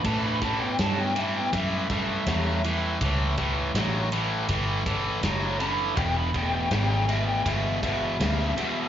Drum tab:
CC |x---------------|----------------|----------------|
RD |x-x-x-x-x-x-x-x-|x-x-x-x-x-x-x-x-|x-x-x-x-x-x-x-x-|
SD |----o-------o---|----o-------o---|----o-------oo--|
BD |o-o-----o-o-----|o-o-----o-o-----|o-o-----o-o-----|